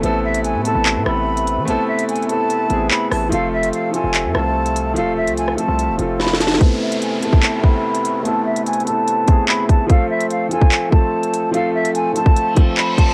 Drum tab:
HH |x--------x--x-----x-----x--------------x--x-----|x--------x--x-x-x-x-----x-----x-----------o-----|x--------x--x-----x-----x--------------x--x-----|x--------x--x-----x-----x-----x-----------x-----|
CP |------------------------x-----------------------|------------------------------------x-----------|------------------------x-----------------------|------------------------------------------------|
SD |------------------------------r-----------------|------------------------------------------r-----|------------------------------r-----------------|---------------r--------------------o-o-o-o-o-o-|
BD |------------------------------------------------|------------------------------------------------|------------------------------------------------|------------------------------------------------|

HH |x--------x--x-----x-----x--------------x--x-----|x--------x--x-x-x-x-----x-----x-----------x-----|x--------x--x-----x-----x--------------x--x-----|x--------x--x-----x-----x-----x-----------x-----|
CP |------------------------x-----------------------|------------------------------------x-----------|------------------------x-----------------------|------------------------------------x-----------|
SD |------------------------------------------------|------------------------------------------------|------------------------------------------------|------------------------------------------------|
BD |o--------------------o--------o-----------------|------------------------------o-----------o-----|o--------------------o--------o-----------------|---------------------o--------o-----------o-----|